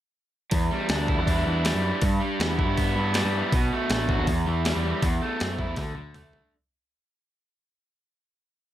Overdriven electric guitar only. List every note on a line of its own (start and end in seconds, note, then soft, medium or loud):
0.52 1.46 E2 medium
0.71 1.62 G3 medium
0.90 1.27 D4 medium
1.09 2.03 E4 medium
1.27 2.39 D4 medium
1.47 1.81 E3 medium
1.64 2.02 G3 medium
1.82 2.02 E3 medium
2.00 2.95 G2 medium
2.20 3.13 G3 medium
2.39 2.76 B3 medium
2.58 3.52 E4 medium
2.76 3.75 B3 medium
2.95 3.33 E3 medium
3.14 3.52 G3 medium
3.34 3.53 E3 medium
3.54 4.28 B2 medium
3.72 4.28 A3 medium
3.90 4.28 D4 medium
4.09 4.28 F#4 medium
4.27 5.02 E2 medium
4.46 4.83 E3 medium
4.65 5.02 G3 medium
4.84 5.03 E3 medium
5.03 5.78 E2 medium
5.21 5.78 A3 medium
5.41 5.78 C4 medium
5.59 5.78 E4 medium
5.77 5.94 D3 medium
5.96 6.34 D3 medium
6.15 6.52 A3 medium
6.35 6.53 D3 medium